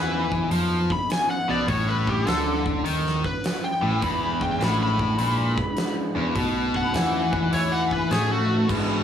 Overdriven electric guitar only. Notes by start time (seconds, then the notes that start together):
Already playing: E3
0.52 F3
1.49 B2
1.68 A2
2.26 D3
2.85 D#3
3.83 A2
4.02 E2
4.60 A2
5.18 A#2
6.16 E2
6.36 B2
6.94 E3
7.52 E3
8.11 A3
8.68 E2 B2